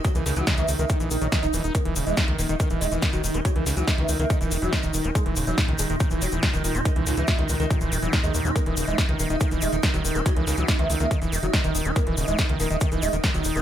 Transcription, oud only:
\new Staff \with { instrumentName = "Oud" } { \clef bass \time 4/4 \key ees \phrygian \tempo 4 = 141 ges16 ees16 ees16 ges16 ees16 fes16 ees16 bes16 ees16 ees16 ees16 des'16 ees16 ees'16 ees16 ees16 | bes16 ees16 ees16 aes16 r16 ees16 bes16 ees16 ees16 ees16 aes16 ees16 r16 ges16 ees16 ees16 | ges16 ees16 ees16 ges16 ees16 fes16 ees16 bes16 ees16 ees16 ees16 ges16 ees16 ees16 ees16 ees16 | aes16 bes,16 bes,16 ges16 bes,16 bes,16 aes16 bes,16 bes,16 bes,16 ges16 bes,16 bes,16 ees16 bes,16 bes,16 |
ees16 bes,16 bes,16 fes16 bes,16 ees16 bes,16 ees16 bes,16 bes,16 bes,16 ges16 bes,16 aes16 bes,16 bes,16 | bes16 ees16 ees16 aes16 ees16 ees16 bes16 ees16 ees16 ees16 aes16 ees16 ees16 ges16 ees16 ees16 | ges16 ees16 ees16 ges16 ees16 fes16 ees16 bes16 r16 ees16 ees16 ges16 ees16 ees16 ees16 ees16 | bes16 ees16 ees16 aes16 ees16 ees16 bes16 ees16 ees16 ees16 aes16 ees16 ees16 ges16 ees16 ees16 | }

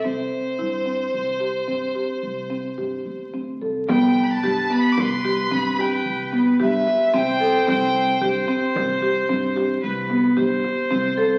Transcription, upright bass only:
\new Staff \with { instrumentName = "Upright bass" } { \clef bass \time 7/4 \key c \major \tempo 4 = 111 c,8 r8 g,4 c,4 g,4 c,4 g,8 e,8 d,8 c,8 | c,4 g,8 r8 c,4 g,4 c,4 g,8 r8 c,4 | c,4 g,8 r8 c,4 g,4 c,4 g,8 r8 c,4 | }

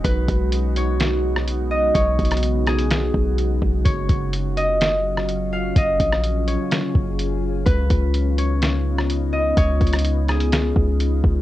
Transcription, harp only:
\new Staff \with { instrumentName = "Harp" } { \time 4/4 \key ces \lydian \tempo 4 = 126 b'4. cis''2 dis''8 | cis''4. gis'4. r4 | des''4. ees''2 f''8 | ees''4. des''2~ des''8 |
ces''4. des''2 ees''8 | des''4. aes'4. r4 | }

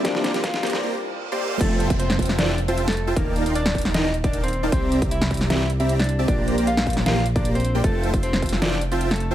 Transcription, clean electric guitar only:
\new Staff \with { instrumentName = "Clean electric guitar" } { \time 4/4 \key f \major \tempo 4 = 154 <d' d''>8. r16 <f' f''>8. r2 r16 | <a a'>8. r16 <c' c''>8. r16 <d' d''>8 r16 <c' c''>16 r16 <a a'>8 r16 | <bes bes'>8. r16 <d' d''>8. r16 <ees' ees''>8 r16 <d' d''>16 r16 <c' c''>8 r16 | <c' c''>8. r16 <e' e''>8. r16 <e' e''>8 r16 <e' e''>16 r16 <d' d''>8 r16 |
<d' d''>8. r16 <f' f''>8. r16 <f' f''>8 r16 <d' d''>16 r16 <c' c''>8 r16 | <a a'>8. r16 <c' c''>8. r16 <d' d''>8 r16 <c' c''>16 r16 <a a'>8 r16 | }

